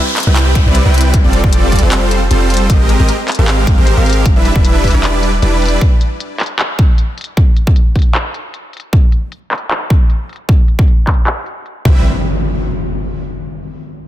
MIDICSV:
0, 0, Header, 1, 6, 480
1, 0, Start_track
1, 0, Key_signature, 0, "major"
1, 0, Tempo, 389610
1, 1403, Time_signature, 4, 2, 24, 8
1, 17345, End_track
2, 0, Start_track
2, 0, Title_t, "Supersaw synth"
2, 0, Program_c, 0, 81
2, 331, Note_on_c, 0, 55, 85
2, 331, Note_on_c, 0, 64, 78
2, 331, Note_on_c, 0, 71, 78
2, 331, Note_on_c, 0, 79, 94
2, 332, Note_on_c, 0, 60, 78
2, 781, Note_off_c, 0, 55, 0
2, 781, Note_off_c, 0, 60, 0
2, 781, Note_off_c, 0, 64, 0
2, 781, Note_off_c, 0, 71, 0
2, 781, Note_off_c, 0, 79, 0
2, 812, Note_on_c, 0, 55, 91
2, 812, Note_on_c, 0, 60, 81
2, 812, Note_on_c, 0, 64, 87
2, 812, Note_on_c, 0, 71, 87
2, 812, Note_on_c, 0, 74, 102
2, 1021, Note_off_c, 0, 55, 0
2, 1021, Note_off_c, 0, 60, 0
2, 1021, Note_off_c, 0, 64, 0
2, 1021, Note_off_c, 0, 71, 0
2, 1021, Note_off_c, 0, 74, 0
2, 1052, Note_on_c, 0, 79, 89
2, 1053, Note_on_c, 0, 55, 81
2, 1053, Note_on_c, 0, 60, 75
2, 1053, Note_on_c, 0, 64, 76
2, 1053, Note_on_c, 0, 71, 78
2, 1389, Note_off_c, 0, 79, 0
2, 1390, Note_off_c, 0, 55, 0
2, 1390, Note_off_c, 0, 60, 0
2, 1390, Note_off_c, 0, 64, 0
2, 1390, Note_off_c, 0, 71, 0
2, 1531, Note_on_c, 0, 69, 72
2, 1531, Note_on_c, 0, 74, 82
2, 1532, Note_on_c, 0, 55, 78
2, 1532, Note_on_c, 0, 60, 70
2, 1532, Note_on_c, 0, 65, 69
2, 1740, Note_off_c, 0, 69, 0
2, 1741, Note_off_c, 0, 55, 0
2, 1741, Note_off_c, 0, 60, 0
2, 1741, Note_off_c, 0, 65, 0
2, 1741, Note_off_c, 0, 74, 0
2, 1770, Note_on_c, 0, 65, 88
2, 1770, Note_on_c, 0, 74, 107
2, 1771, Note_on_c, 0, 55, 97
2, 1771, Note_on_c, 0, 69, 89
2, 1772, Note_on_c, 0, 60, 90
2, 2220, Note_off_c, 0, 65, 0
2, 2220, Note_off_c, 0, 69, 0
2, 2220, Note_off_c, 0, 74, 0
2, 2221, Note_off_c, 0, 55, 0
2, 2221, Note_off_c, 0, 60, 0
2, 2252, Note_on_c, 0, 55, 84
2, 2252, Note_on_c, 0, 69, 73
2, 2253, Note_on_c, 0, 60, 80
2, 2253, Note_on_c, 0, 65, 78
2, 2253, Note_on_c, 0, 72, 93
2, 2701, Note_off_c, 0, 55, 0
2, 2701, Note_off_c, 0, 69, 0
2, 2702, Note_off_c, 0, 60, 0
2, 2702, Note_off_c, 0, 65, 0
2, 2702, Note_off_c, 0, 72, 0
2, 2842, Note_on_c, 0, 55, 84
2, 2842, Note_on_c, 0, 69, 78
2, 2842, Note_on_c, 0, 72, 88
2, 2843, Note_on_c, 0, 60, 78
2, 2843, Note_on_c, 0, 65, 77
2, 3296, Note_off_c, 0, 55, 0
2, 3296, Note_off_c, 0, 65, 0
2, 3296, Note_off_c, 0, 69, 0
2, 3296, Note_off_c, 0, 72, 0
2, 3297, Note_off_c, 0, 60, 0
2, 3320, Note_on_c, 0, 56, 85
2, 3320, Note_on_c, 0, 60, 75
2, 3320, Note_on_c, 0, 67, 77
2, 3320, Note_on_c, 0, 70, 73
2, 3320, Note_on_c, 0, 75, 95
2, 3660, Note_off_c, 0, 56, 0
2, 3660, Note_off_c, 0, 60, 0
2, 3660, Note_off_c, 0, 67, 0
2, 3660, Note_off_c, 0, 70, 0
2, 3660, Note_off_c, 0, 75, 0
2, 3691, Note_on_c, 0, 56, 88
2, 3691, Note_on_c, 0, 67, 80
2, 3691, Note_on_c, 0, 70, 80
2, 3691, Note_on_c, 0, 75, 103
2, 3692, Note_on_c, 0, 60, 83
2, 3845, Note_off_c, 0, 67, 0
2, 3845, Note_off_c, 0, 70, 0
2, 3846, Note_off_c, 0, 56, 0
2, 3846, Note_off_c, 0, 60, 0
2, 3846, Note_off_c, 0, 75, 0
2, 4173, Note_on_c, 0, 56, 91
2, 4173, Note_on_c, 0, 60, 81
2, 4173, Note_on_c, 0, 70, 81
2, 4173, Note_on_c, 0, 77, 95
2, 4174, Note_on_c, 0, 67, 80
2, 4621, Note_off_c, 0, 56, 0
2, 4622, Note_off_c, 0, 60, 0
2, 4622, Note_off_c, 0, 67, 0
2, 4622, Note_off_c, 0, 70, 0
2, 4622, Note_off_c, 0, 77, 0
2, 4652, Note_on_c, 0, 56, 89
2, 4653, Note_on_c, 0, 70, 85
2, 4654, Note_on_c, 0, 60, 84
2, 4654, Note_on_c, 0, 67, 89
2, 4654, Note_on_c, 0, 72, 99
2, 4861, Note_off_c, 0, 56, 0
2, 4862, Note_off_c, 0, 60, 0
2, 4862, Note_off_c, 0, 67, 0
2, 4862, Note_off_c, 0, 70, 0
2, 4862, Note_off_c, 0, 72, 0
2, 4892, Note_on_c, 0, 60, 77
2, 4892, Note_on_c, 0, 70, 73
2, 4893, Note_on_c, 0, 56, 78
2, 4893, Note_on_c, 0, 67, 76
2, 4893, Note_on_c, 0, 77, 92
2, 5229, Note_off_c, 0, 60, 0
2, 5230, Note_off_c, 0, 56, 0
2, 5230, Note_off_c, 0, 67, 0
2, 5230, Note_off_c, 0, 70, 0
2, 5230, Note_off_c, 0, 77, 0
2, 5373, Note_on_c, 0, 55, 76
2, 5373, Note_on_c, 0, 62, 71
2, 5373, Note_on_c, 0, 64, 72
2, 5374, Note_on_c, 0, 71, 69
2, 5374, Note_on_c, 0, 76, 87
2, 5581, Note_off_c, 0, 62, 0
2, 5582, Note_off_c, 0, 55, 0
2, 5582, Note_off_c, 0, 64, 0
2, 5582, Note_off_c, 0, 71, 0
2, 5582, Note_off_c, 0, 76, 0
2, 5612, Note_on_c, 0, 55, 95
2, 5612, Note_on_c, 0, 62, 91
2, 5612, Note_on_c, 0, 64, 93
2, 5612, Note_on_c, 0, 71, 86
2, 5612, Note_on_c, 0, 76, 103
2, 6061, Note_off_c, 0, 55, 0
2, 6061, Note_off_c, 0, 62, 0
2, 6061, Note_off_c, 0, 64, 0
2, 6061, Note_off_c, 0, 71, 0
2, 6061, Note_off_c, 0, 76, 0
2, 6091, Note_on_c, 0, 55, 81
2, 6091, Note_on_c, 0, 62, 76
2, 6091, Note_on_c, 0, 64, 78
2, 6091, Note_on_c, 0, 71, 76
2, 6091, Note_on_c, 0, 74, 99
2, 6540, Note_off_c, 0, 55, 0
2, 6540, Note_off_c, 0, 64, 0
2, 6540, Note_off_c, 0, 74, 0
2, 6541, Note_off_c, 0, 62, 0
2, 6541, Note_off_c, 0, 71, 0
2, 6680, Note_on_c, 0, 71, 76
2, 6681, Note_on_c, 0, 55, 84
2, 6681, Note_on_c, 0, 62, 78
2, 6681, Note_on_c, 0, 64, 78
2, 6681, Note_on_c, 0, 74, 93
2, 7135, Note_off_c, 0, 62, 0
2, 7135, Note_off_c, 0, 64, 0
2, 7135, Note_off_c, 0, 71, 0
2, 7135, Note_off_c, 0, 74, 0
2, 7136, Note_off_c, 0, 55, 0
2, 14601, Note_on_c, 0, 64, 82
2, 14602, Note_on_c, 0, 55, 84
2, 14602, Note_on_c, 0, 60, 82
2, 14602, Note_on_c, 0, 71, 78
2, 14602, Note_on_c, 0, 76, 99
2, 14784, Note_off_c, 0, 55, 0
2, 14784, Note_off_c, 0, 60, 0
2, 14784, Note_off_c, 0, 64, 0
2, 14784, Note_off_c, 0, 71, 0
2, 14785, Note_off_c, 0, 76, 0
2, 17345, End_track
3, 0, Start_track
3, 0, Title_t, "808-style bass"
3, 0, Program_c, 1, 38
3, 331, Note_on_c, 1, 36, 94
3, 786, Note_off_c, 1, 36, 0
3, 812, Note_on_c, 1, 36, 95
3, 1026, Note_off_c, 1, 36, 0
3, 1051, Note_on_c, 1, 36, 101
3, 1506, Note_off_c, 1, 36, 0
3, 1532, Note_on_c, 1, 29, 92
3, 1746, Note_off_c, 1, 29, 0
3, 1771, Note_on_c, 1, 29, 98
3, 2226, Note_off_c, 1, 29, 0
3, 2251, Note_on_c, 1, 29, 91
3, 2820, Note_off_c, 1, 29, 0
3, 2842, Note_on_c, 1, 29, 93
3, 3322, Note_on_c, 1, 32, 91
3, 3341, Note_off_c, 1, 29, 0
3, 3666, Note_off_c, 1, 32, 0
3, 3694, Note_on_c, 1, 32, 98
3, 3821, Note_off_c, 1, 32, 0
3, 4173, Note_on_c, 1, 32, 96
3, 4627, Note_off_c, 1, 32, 0
3, 4654, Note_on_c, 1, 32, 97
3, 4867, Note_off_c, 1, 32, 0
3, 4893, Note_on_c, 1, 32, 98
3, 5373, Note_on_c, 1, 28, 102
3, 5391, Note_off_c, 1, 32, 0
3, 5587, Note_off_c, 1, 28, 0
3, 5613, Note_on_c, 1, 28, 98
3, 6067, Note_off_c, 1, 28, 0
3, 6093, Note_on_c, 1, 28, 96
3, 6661, Note_off_c, 1, 28, 0
3, 6682, Note_on_c, 1, 28, 97
3, 7114, Note_off_c, 1, 28, 0
3, 14602, Note_on_c, 1, 36, 99
3, 14826, Note_off_c, 1, 36, 0
3, 17345, End_track
4, 0, Start_track
4, 0, Title_t, "Downlifter"
4, 0, Program_c, 2, 103
4, 0, Note_on_c, 2, 60, 66
4, 3322, Note_off_c, 2, 60, 0
4, 17345, End_track
5, 0, Start_track
5, 0, Title_t, "Impact"
5, 0, Program_c, 3, 103
5, 14603, Note_on_c, 3, 60, 69
5, 16523, Note_off_c, 3, 60, 0
5, 17345, End_track
6, 0, Start_track
6, 0, Title_t, "Drums"
6, 203, Note_on_c, 9, 39, 56
6, 203, Note_on_c, 9, 42, 47
6, 246, Note_off_c, 9, 42, 0
6, 246, Note_on_c, 9, 42, 63
6, 283, Note_off_c, 9, 42, 0
6, 283, Note_on_c, 9, 42, 77
6, 326, Note_off_c, 9, 39, 0
6, 406, Note_off_c, 9, 42, 0
6, 442, Note_on_c, 9, 39, 115
6, 442, Note_on_c, 9, 42, 79
6, 565, Note_off_c, 9, 39, 0
6, 565, Note_off_c, 9, 42, 0
6, 682, Note_on_c, 9, 36, 104
6, 682, Note_on_c, 9, 42, 66
6, 805, Note_off_c, 9, 36, 0
6, 805, Note_off_c, 9, 42, 0
6, 921, Note_on_c, 9, 42, 77
6, 1044, Note_off_c, 9, 42, 0
6, 1162, Note_on_c, 9, 42, 49
6, 1204, Note_off_c, 9, 42, 0
6, 1204, Note_on_c, 9, 42, 66
6, 1240, Note_off_c, 9, 42, 0
6, 1240, Note_on_c, 9, 42, 79
6, 1364, Note_off_c, 9, 42, 0
6, 1400, Note_on_c, 9, 42, 77
6, 1402, Note_on_c, 9, 36, 118
6, 1524, Note_off_c, 9, 42, 0
6, 1525, Note_off_c, 9, 36, 0
6, 1640, Note_on_c, 9, 42, 64
6, 1763, Note_off_c, 9, 42, 0
6, 1771, Note_on_c, 9, 36, 112
6, 1880, Note_on_c, 9, 42, 82
6, 1895, Note_off_c, 9, 36, 0
6, 2003, Note_off_c, 9, 42, 0
6, 2121, Note_on_c, 9, 42, 47
6, 2122, Note_on_c, 9, 36, 58
6, 2164, Note_off_c, 9, 42, 0
6, 2164, Note_on_c, 9, 42, 61
6, 2200, Note_off_c, 9, 42, 0
6, 2200, Note_on_c, 9, 42, 75
6, 2245, Note_off_c, 9, 36, 0
6, 2324, Note_off_c, 9, 42, 0
6, 2361, Note_on_c, 9, 39, 122
6, 2361, Note_on_c, 9, 42, 79
6, 2484, Note_off_c, 9, 39, 0
6, 2484, Note_off_c, 9, 42, 0
6, 2602, Note_on_c, 9, 42, 66
6, 2725, Note_off_c, 9, 42, 0
6, 2843, Note_on_c, 9, 42, 80
6, 2966, Note_off_c, 9, 42, 0
6, 3082, Note_on_c, 9, 42, 49
6, 3127, Note_off_c, 9, 42, 0
6, 3127, Note_on_c, 9, 42, 64
6, 3163, Note_off_c, 9, 42, 0
6, 3163, Note_on_c, 9, 42, 75
6, 3286, Note_off_c, 9, 42, 0
6, 3322, Note_on_c, 9, 36, 113
6, 3323, Note_on_c, 9, 42, 74
6, 3445, Note_off_c, 9, 36, 0
6, 3446, Note_off_c, 9, 42, 0
6, 3562, Note_on_c, 9, 42, 61
6, 3686, Note_off_c, 9, 42, 0
6, 3801, Note_on_c, 9, 42, 78
6, 3925, Note_off_c, 9, 42, 0
6, 4043, Note_on_c, 9, 39, 65
6, 4043, Note_on_c, 9, 42, 46
6, 4087, Note_off_c, 9, 42, 0
6, 4087, Note_on_c, 9, 42, 60
6, 4123, Note_off_c, 9, 42, 0
6, 4123, Note_on_c, 9, 42, 71
6, 4166, Note_off_c, 9, 39, 0
6, 4246, Note_off_c, 9, 42, 0
6, 4284, Note_on_c, 9, 39, 120
6, 4284, Note_on_c, 9, 42, 77
6, 4407, Note_off_c, 9, 39, 0
6, 4407, Note_off_c, 9, 42, 0
6, 4523, Note_on_c, 9, 36, 113
6, 4525, Note_on_c, 9, 42, 61
6, 4646, Note_off_c, 9, 36, 0
6, 4648, Note_off_c, 9, 42, 0
6, 4764, Note_on_c, 9, 42, 77
6, 4887, Note_off_c, 9, 42, 0
6, 5004, Note_on_c, 9, 42, 45
6, 5046, Note_off_c, 9, 42, 0
6, 5046, Note_on_c, 9, 42, 62
6, 5083, Note_off_c, 9, 42, 0
6, 5083, Note_on_c, 9, 42, 76
6, 5207, Note_off_c, 9, 42, 0
6, 5243, Note_on_c, 9, 36, 121
6, 5243, Note_on_c, 9, 42, 77
6, 5366, Note_off_c, 9, 36, 0
6, 5367, Note_off_c, 9, 42, 0
6, 5484, Note_on_c, 9, 42, 63
6, 5607, Note_off_c, 9, 42, 0
6, 5613, Note_on_c, 9, 36, 115
6, 5724, Note_on_c, 9, 42, 79
6, 5736, Note_off_c, 9, 36, 0
6, 5847, Note_off_c, 9, 42, 0
6, 5963, Note_on_c, 9, 36, 58
6, 5963, Note_on_c, 9, 42, 46
6, 6006, Note_off_c, 9, 42, 0
6, 6006, Note_on_c, 9, 42, 58
6, 6045, Note_off_c, 9, 42, 0
6, 6045, Note_on_c, 9, 42, 73
6, 6086, Note_off_c, 9, 36, 0
6, 6168, Note_off_c, 9, 42, 0
6, 6203, Note_on_c, 9, 39, 119
6, 6203, Note_on_c, 9, 42, 76
6, 6326, Note_off_c, 9, 39, 0
6, 6326, Note_off_c, 9, 42, 0
6, 6443, Note_on_c, 9, 42, 62
6, 6566, Note_off_c, 9, 42, 0
6, 6684, Note_on_c, 9, 42, 73
6, 6807, Note_off_c, 9, 42, 0
6, 6924, Note_on_c, 9, 42, 44
6, 6967, Note_off_c, 9, 42, 0
6, 6967, Note_on_c, 9, 42, 61
6, 7004, Note_off_c, 9, 42, 0
6, 7004, Note_on_c, 9, 42, 75
6, 7127, Note_off_c, 9, 42, 0
6, 7162, Note_on_c, 9, 42, 75
6, 7163, Note_on_c, 9, 36, 107
6, 7286, Note_off_c, 9, 36, 0
6, 7286, Note_off_c, 9, 42, 0
6, 7404, Note_on_c, 9, 42, 63
6, 7527, Note_off_c, 9, 42, 0
6, 7643, Note_on_c, 9, 42, 78
6, 7767, Note_off_c, 9, 42, 0
6, 7882, Note_on_c, 9, 39, 58
6, 7882, Note_on_c, 9, 42, 47
6, 7924, Note_off_c, 9, 42, 0
6, 7924, Note_on_c, 9, 42, 60
6, 7961, Note_off_c, 9, 42, 0
6, 7961, Note_on_c, 9, 42, 74
6, 8006, Note_off_c, 9, 39, 0
6, 8084, Note_off_c, 9, 42, 0
6, 8121, Note_on_c, 9, 39, 119
6, 8121, Note_on_c, 9, 42, 75
6, 8244, Note_off_c, 9, 39, 0
6, 8244, Note_off_c, 9, 42, 0
6, 8361, Note_on_c, 9, 42, 61
6, 8362, Note_on_c, 9, 36, 112
6, 8484, Note_off_c, 9, 42, 0
6, 8486, Note_off_c, 9, 36, 0
6, 8601, Note_on_c, 9, 42, 70
6, 8724, Note_off_c, 9, 42, 0
6, 8841, Note_on_c, 9, 42, 49
6, 8884, Note_off_c, 9, 42, 0
6, 8884, Note_on_c, 9, 42, 64
6, 8921, Note_off_c, 9, 42, 0
6, 8921, Note_on_c, 9, 42, 74
6, 9044, Note_off_c, 9, 42, 0
6, 9081, Note_on_c, 9, 42, 78
6, 9082, Note_on_c, 9, 36, 107
6, 9204, Note_off_c, 9, 42, 0
6, 9205, Note_off_c, 9, 36, 0
6, 9321, Note_on_c, 9, 42, 65
6, 9444, Note_off_c, 9, 42, 0
6, 9451, Note_on_c, 9, 36, 103
6, 9560, Note_on_c, 9, 42, 85
6, 9574, Note_off_c, 9, 36, 0
6, 9684, Note_off_c, 9, 42, 0
6, 9801, Note_on_c, 9, 42, 47
6, 9802, Note_on_c, 9, 36, 57
6, 9842, Note_off_c, 9, 42, 0
6, 9842, Note_on_c, 9, 42, 61
6, 9879, Note_off_c, 9, 42, 0
6, 9879, Note_on_c, 9, 42, 76
6, 9925, Note_off_c, 9, 36, 0
6, 10002, Note_off_c, 9, 42, 0
6, 10039, Note_on_c, 9, 39, 110
6, 10039, Note_on_c, 9, 42, 80
6, 10162, Note_off_c, 9, 39, 0
6, 10162, Note_off_c, 9, 42, 0
6, 10280, Note_on_c, 9, 42, 64
6, 10403, Note_off_c, 9, 42, 0
6, 10520, Note_on_c, 9, 42, 75
6, 10643, Note_off_c, 9, 42, 0
6, 10759, Note_on_c, 9, 42, 47
6, 10803, Note_off_c, 9, 42, 0
6, 10803, Note_on_c, 9, 42, 65
6, 10839, Note_off_c, 9, 42, 0
6, 10839, Note_on_c, 9, 42, 78
6, 10962, Note_off_c, 9, 42, 0
6, 11000, Note_on_c, 9, 42, 81
6, 11001, Note_on_c, 9, 36, 108
6, 11123, Note_off_c, 9, 42, 0
6, 11124, Note_off_c, 9, 36, 0
6, 11239, Note_on_c, 9, 42, 66
6, 11362, Note_off_c, 9, 42, 0
6, 11481, Note_on_c, 9, 42, 85
6, 11604, Note_off_c, 9, 42, 0
6, 11722, Note_on_c, 9, 39, 56
6, 11722, Note_on_c, 9, 42, 50
6, 11765, Note_off_c, 9, 42, 0
6, 11765, Note_on_c, 9, 42, 64
6, 11799, Note_off_c, 9, 42, 0
6, 11799, Note_on_c, 9, 42, 77
6, 11845, Note_off_c, 9, 39, 0
6, 11923, Note_off_c, 9, 42, 0
6, 11961, Note_on_c, 9, 39, 112
6, 11961, Note_on_c, 9, 42, 85
6, 12084, Note_off_c, 9, 39, 0
6, 12084, Note_off_c, 9, 42, 0
6, 12200, Note_on_c, 9, 36, 103
6, 12201, Note_on_c, 9, 42, 67
6, 12324, Note_off_c, 9, 36, 0
6, 12324, Note_off_c, 9, 42, 0
6, 12440, Note_on_c, 9, 42, 80
6, 12563, Note_off_c, 9, 42, 0
6, 12682, Note_on_c, 9, 42, 50
6, 12724, Note_off_c, 9, 42, 0
6, 12724, Note_on_c, 9, 42, 69
6, 12762, Note_off_c, 9, 42, 0
6, 12762, Note_on_c, 9, 42, 81
6, 12885, Note_off_c, 9, 42, 0
6, 12921, Note_on_c, 9, 36, 109
6, 12921, Note_on_c, 9, 42, 83
6, 13044, Note_off_c, 9, 36, 0
6, 13044, Note_off_c, 9, 42, 0
6, 13161, Note_on_c, 9, 42, 67
6, 13284, Note_off_c, 9, 42, 0
6, 13291, Note_on_c, 9, 36, 105
6, 13401, Note_on_c, 9, 42, 85
6, 13414, Note_off_c, 9, 36, 0
6, 13525, Note_off_c, 9, 42, 0
6, 13642, Note_on_c, 9, 36, 55
6, 13642, Note_on_c, 9, 39, 58
6, 13642, Note_on_c, 9, 42, 48
6, 13685, Note_off_c, 9, 42, 0
6, 13685, Note_on_c, 9, 42, 67
6, 13722, Note_off_c, 9, 42, 0
6, 13722, Note_on_c, 9, 42, 83
6, 13765, Note_off_c, 9, 36, 0
6, 13765, Note_off_c, 9, 39, 0
6, 13845, Note_off_c, 9, 42, 0
6, 13881, Note_on_c, 9, 39, 113
6, 13881, Note_on_c, 9, 42, 82
6, 14004, Note_off_c, 9, 39, 0
6, 14004, Note_off_c, 9, 42, 0
6, 14122, Note_on_c, 9, 42, 71
6, 14245, Note_off_c, 9, 42, 0
6, 14363, Note_on_c, 9, 42, 82
6, 14486, Note_off_c, 9, 42, 0
6, 14603, Note_on_c, 9, 36, 121
6, 14726, Note_off_c, 9, 36, 0
6, 17345, End_track
0, 0, End_of_file